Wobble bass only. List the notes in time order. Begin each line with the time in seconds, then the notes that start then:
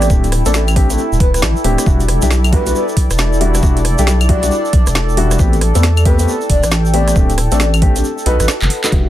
0.10 D1
0.46 A1
1.12 D1
1.42 A1
1.64 D1
1.86 E1
2.22 B1
2.97 B1
3.11 E1
3.63 E1
3.99 B1
4.73 B1
4.87 E1
5.39 A1
5.75 E2
6.50 E1
6.63 A1
7.16 D1
7.52 A1
8.26 B1
8.40 A1
8.62 F#1
8.92 E1